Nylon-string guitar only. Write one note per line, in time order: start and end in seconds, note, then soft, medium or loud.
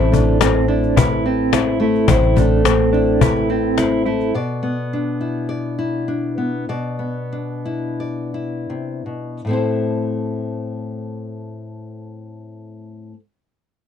0.00 2.07 A2 medium
0.00 0.12 A3 soft
0.00 0.40 C4 medium
0.00 0.68 E4 medium
0.00 0.97 C5 medium
0.12 1.79 A3 soft
0.41 1.51 C4 soft
0.68 1.24 E4 soft
0.97 2.06 B4 soft
1.26 2.93 E4 soft
1.52 2.64 C4 soft
1.80 2.05 A3 medium
2.09 4.33 A2 medium
2.09 3.21 C5 medium
2.36 4.05 A3 medium
2.66 3.77 C4 soft
2.94 3.48 E4 soft
3.22 4.30 B4 soft
3.50 4.34 E4 soft
3.79 4.34 C4 soft
4.06 4.31 A3 soft
4.34 6.64 B2 medium
4.34 5.48 D5 medium
4.63 6.36 B3 medium
4.93 6.07 D4 soft
5.21 5.77 E4 soft
5.49 6.64 D5 soft
5.79 6.68 E4 soft
6.08 6.64 D4 soft
6.38 6.64 B3 soft
6.69 8.69 B2 medium
6.69 7.99 D5 medium
6.99 9.40 B3 soft
7.32 9.40 D4 soft
7.65 8.33 E4 soft
8.00 9.41 D5 soft
8.34 9.49 E4 soft
8.70 9.05 C3 soft
9.06 9.44 B2 soft
9.45 13.11 A2 soft
9.45 13.13 A3 soft
9.49 13.15 C4 soft
9.49 13.17 E4 soft
9.53 13.19 C5 soft